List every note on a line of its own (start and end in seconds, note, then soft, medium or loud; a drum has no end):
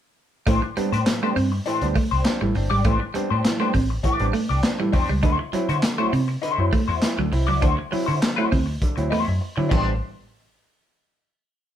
0.47 0.59 A1 loud
0.47 0.62 A2 medium
0.47 0.62 E3 medium
0.47 0.60 A3 medium
0.47 0.66 D4 medium
0.47 0.62 G4 medium
0.47 0.61 C5 medium
0.47 kick loud
0.47 closed hi-hat medium
0.62 muted clean electric guitar stroke medium
0.77 0.90 G3 medium
0.77 0.92 G3 medium
0.77 0.92 B3 medium
0.77 0.92 C4 medium
0.77 0.92 D4 loud
0.77 muted picked electric bass stroke soft
0.77 muted clean electric guitar stroke soft
0.77 closed hi-hat medium
0.93 1.03 A2 loud
0.93 0.98 C4 soft
0.93 0.98 D4 soft
0.93 1.06 D4 medium
0.93 1.07 G4 medium
0.93 1.06 C5 medium
0.93 closed hi-hat medium
1.06 1.22 A2 medium
1.06 1.22 E3 soft
1.06 muted clean electric guitar stroke soft
1.06 snare loud
1.06 clap loud
1.06 closed hi-hat loud
1.22 1.36 G3 medium
1.22 1.34 A3 medium
1.22 1.36 B3 medium
1.22 1.35 C4 medium
1.22 1.35 D4 medium
1.22 1.36 G4 medium
1.22 1.37 C5 medium
1.36 1.59 G2 medium
1.36 1.50 C4 medium
1.36 1.43 C4 soft
1.36 1.43 D4 soft
1.36 muted clean electric guitar stroke soft
1.36 open hi-hat medium
1.52 muted clean electric guitar stroke soft
1.66 1.81 A2 medium
1.66 1.81 E3 medium
1.66 1.85 D4 medium
1.66 1.85 G4 loud
1.66 1.86 C5 medium
1.66 closed hi-hat medium
1.81 1.92 D2 medium
1.81 1.95 G3 medium
1.81 1.95 B3 medium
1.81 1.95 C4 medium
1.81 1.96 D4 medium
1.81 closed hi-hat medium
1.95 2.09 A3 medium
1.95 2.03 C4 soft
1.95 2.03 D4 soft
1.95 muted clean electric guitar stroke soft
1.95 kick medium
1.95 open hi-hat medium
2.11 2.22 C2 medium
2.11 2.25 D4 soft
2.11 2.25 G4 medium
2.11 2.25 C5 medium
2.25 2.41 C4 medium
2.25 2.41 D4 medium
2.25 muted clean electric guitar stroke soft
2.25 snare loud
2.25 clap medium
2.25 closed hi-hat medium
2.41 2.52 A1 medium
2.41 2.55 A2 medium
2.41 2.55 E3 medium
2.41 2.53 G3 medium
2.41 muted clean electric guitar stroke medium
2.55 2.67 G1 loud
2.55 2.71 C4 medium
2.55 2.71 D4 medium
2.55 muted clean electric guitar stroke soft
2.55 open hi-hat medium
2.70 2.82 G#1 medium
2.70 2.83 G3 medium
2.70 2.83 D4 medium
2.70 2.84 G4 medium
2.70 2.85 D5 medium
2.84 2.97 A1 loud
2.84 3.01 A2 medium
2.84 3.01 E3 medium
2.84 2.98 A3 medium
2.84 3.04 D4 medium
2.84 3.00 G4 medium
2.84 2.99 C5 medium
2.84 kick loud
2.84 closed hi-hat medium
3.00 muted clean electric guitar stroke soft
3.14 3.28 G3 medium
3.14 3.30 G3 medium
3.14 3.30 B3 medium
3.14 3.30 C4 medium
3.14 3.30 D4 loud
3.14 muted clean electric guitar stroke soft
3.14 muted picked electric bass stroke soft
3.14 closed hi-hat medium
3.30 3.42 A2 loud
3.30 3.37 C4 soft
3.30 3.37 D4 soft
3.30 3.43 D4 medium
3.30 3.44 G4 medium
3.30 3.44 C5 medium
3.44 3.60 A2 medium
3.44 3.60 E3 medium
3.44 muted clean electric guitar stroke soft
3.44 snare loud
3.44 clap medium
3.44 closed hi-hat loud
3.60 3.74 G3 medium
3.60 3.72 A3 medium
3.60 3.74 B3 medium
3.60 3.74 C4 medium
3.60 3.74 D4 medium
3.60 3.72 D4 medium
3.60 3.73 G4 medium
3.60 3.74 C5 medium
3.74 3.97 A1 medium
3.74 3.87 C4 medium
3.74 3.81 C4 soft
3.74 3.81 D4 soft
3.74 muted clean electric guitar stroke soft
3.74 kick medium
3.74 open hi-hat medium
3.90 muted clean electric guitar stroke soft
4.03 4.20 A2 medium
4.03 4.20 E3 medium
4.03 4.25 D4 medium
4.03 4.25 G4 medium
4.03 4.25 D5 medium
4.03 kick medium
4.03 closed hi-hat medium
4.19 4.31 A1 medium
4.19 4.34 G3 medium
4.19 4.34 B3 medium
4.19 4.33 C4 medium
4.19 4.34 D4 medium
4.19 closed hi-hat soft
4.33 4.47 A3 medium
4.33 4.41 C4 soft
4.33 4.41 D4 soft
4.33 muted clean electric guitar stroke soft
4.33 open hi-hat medium
4.49 4.60 C2 medium
4.49 4.62 D4 medium
4.49 4.62 G4 medium
4.49 4.63 D5 medium
4.63 4.79 C4 medium
4.63 4.79 D4 medium
4.63 muted clean electric guitar stroke soft
4.63 snare loud
4.63 clap medium
4.63 closed hi-hat medium
4.79 4.93 A2 medium
4.79 4.93 E3 medium
4.79 4.92 G3 medium
4.79 muted clean electric guitar stroke soft
4.92 5.06 E2 medium
4.92 5.09 C4 medium
4.92 5.12 D4 medium
4.92 5.09 D4 medium
4.92 5.09 G4 loud
4.92 5.08 C5 loud
4.92 muted clean electric guitar stroke soft
4.92 kick loud
4.92 open hi-hat medium
5.09 5.20 C#2 medium
5.09 5.21 G3 medium
5.09 muted clean electric guitar stroke medium
5.23 5.35 D2 loud
5.23 5.39 D3 medium
5.23 5.37 D4 medium
5.23 5.44 E4 medium
5.23 5.39 F#4 medium
5.23 5.38 C5 loud
5.23 kick loud
5.23 closed hi-hat medium
5.39 muted clean electric guitar stroke soft
5.53 5.67 F#3 medium
5.53 5.69 F#3 loud
5.53 5.69 C4 medium
5.53 5.69 E4 loud
5.53 muted clean electric guitar stroke soft
5.53 muted picked electric bass stroke soft
5.53 closed hi-hat medium
5.69 5.80 D3 loud
5.69 5.75 C4 soft
5.69 5.81 E4 medium
5.69 5.75 E4 soft
5.69 5.81 F#4 medium
5.69 5.82 C5 medium
5.69 closed hi-hat medium
5.82 5.99 D3 medium
5.82 muted clean electric guitar stroke medium
5.82 snare loud
5.82 clap loud
5.82 closed hi-hat loud
5.98 6.13 F#3 medium
5.98 6.11 A3 medium
5.98 6.13 C4 medium
5.98 6.12 E4 medium
5.98 6.13 E4 medium
5.98 6.12 F#4 medium
5.98 6.13 C5 medium
6.13 6.35 C3 medium
6.13 6.26 C4 medium
6.13 6.20 C4 soft
6.13 6.20 E4 soft
6.13 muted clean electric guitar stroke soft
6.13 open hi-hat medium
6.28 muted clean electric guitar stroke soft
6.42 6.59 D3 medium
6.42 6.63 E4 medium
6.42 6.63 F#4 medium
6.42 6.64 C5 medium
6.42 closed hi-hat medium
6.58 6.69 F#2 loud
6.58 6.73 F#3 medium
6.58 6.73 C4 medium
6.58 6.73 E4 medium
6.72 6.86 A3 medium
6.72 6.80 C4 soft
6.72 6.80 E4 soft
6.72 muted clean electric guitar stroke soft
6.72 kick loud
6.72 open hi-hat medium
6.88 6.99 E2 medium
6.88 7.00 E4 medium
6.88 7.01 F#4 medium
6.88 7.01 C5 medium
7.01 7.18 C4 medium
7.01 7.18 E4 medium
7.01 muted clean electric guitar stroke soft
7.01 snare loud
7.01 clap medium
7.01 closed hi-hat loud
7.17 7.29 D2 medium
7.17 7.32 D3 medium
7.17 7.30 F#3 medium
7.17 muted clean electric guitar stroke soft
7.33 7.49 C2 loud
7.33 7.48 C4 medium
7.33 7.48 E4 medium
7.33 muted clean electric guitar stroke soft
7.33 open hi-hat medium
7.47 7.59 C#2 medium
7.47 7.60 F#3 medium
7.47 7.59 E4 medium
7.47 7.60 F#4 medium
7.47 7.61 D5 medium
7.61 7.75 D2 loud
7.61 7.78 D3 medium
7.61 7.76 D4 medium
7.61 7.81 E4 medium
7.61 7.77 F#4 loud
7.61 7.75 C5 loud
7.61 kick loud
7.61 closed hi-hat medium
7.77 muted clean electric guitar stroke medium
7.91 8.06 F#3 medium
7.91 8.07 F#3 medium
7.91 8.07 C4 medium
7.91 8.07 E4 loud
7.91 muted clean electric guitar stroke soft
7.91 muted picked electric bass stroke soft
7.91 open hi-hat medium
8.06 8.19 D3 loud
8.06 8.14 C4 soft
8.06 8.19 E4 medium
8.06 8.14 E4 soft
8.06 8.20 F#4 medium
8.06 8.20 C5 medium
8.20 8.38 D3 medium
8.20 muted clean electric guitar stroke soft
8.20 snare loud
8.20 clap loud
8.20 closed hi-hat loud
8.36 8.51 F#3 medium
8.36 8.50 A3 medium
8.36 8.51 C4 medium
8.36 8.50 E4 medium
8.36 8.51 E4 medium
8.36 8.50 F#4 medium
8.36 8.51 C5 medium
8.51 8.75 D2 medium
8.51 8.65 C4 medium
8.51 8.59 C4 soft
8.51 8.58 E4 soft
8.51 muted clean electric guitar stroke soft
8.51 kick medium
8.51 open hi-hat medium
8.66 muted clean electric guitar stroke soft
8.82 8.97 D3 medium
8.82 kick medium
8.82 closed hi-hat medium
8.96 9.12 D2 medium
8.96 9.11 F#3 medium
8.96 9.11 C4 medium
8.96 9.11 E4 medium
8.96 muted clean electric guitar stroke soft
8.96 closed hi-hat medium
9.10 9.24 E2 medium
9.10 9.25 A3 medium
9.10 9.18 C4 soft
9.10 9.32 E4 medium
9.10 9.18 E4 soft
9.10 9.26 F#4 medium
9.10 9.25 C5 medium
9.10 open hi-hat medium
9.26 9.38 F#2 medium
9.26 muted clean electric guitar stroke soft
9.41 muted clean electric guitar stroke soft
9.56 9.68 D3 loud
9.56 9.71 F#3 medium
9.56 9.69 F#3 medium
9.56 9.71 C4 medium
9.56 9.71 E4 medium
9.56 muted clean electric guitar stroke soft
9.69 9.99 A1 loud
9.69 9.89 E3 medium
9.69 9.94 G3 medium
9.69 9.94 B3 medium
9.69 9.94 C4 medium
9.69 9.89 D4 medium
9.69 9.94 D4 medium
9.69 9.89 G4 medium
9.69 9.90 C5 medium
9.69 kick loud
9.69 crash loud